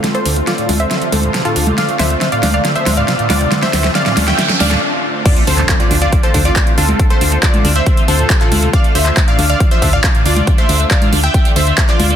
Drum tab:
CC |----------------|----------------|----------------|x---------------|
HH |xxoxxxoxxxoxxxox|xxoxxxoxxxoxxxox|xxoxxxoxxxox----|xxoxxxoxxxoxxxox|
CP |----------------|----------------|----------------|---xx-------x---|
SD |o---o---o---o---|o-o-o-o-o-o-o-o-|oooooooooooo----|----------------|
CG |o-----o---o----o|------o---o---o-|o-----o---o-----|---------------o|
BD |----------------|----------------|----------------|o---o---o-o-o---|

CC |----------------|----------------|----------------|
HH |xxoxxxoxxxoxxxox|xxoxxxoxxxoxxxox|xxoxxxoxxxoxxxox|
CP |----x-------xx--|---xx-------x---|----x-------xx--|
SD |----------------|----------------|----------------|
CG |-----o--------o-|---------------o|-----o--------o-|
BD |o---o---o---o---|o---o---o-o-o---|o---o---o---o---|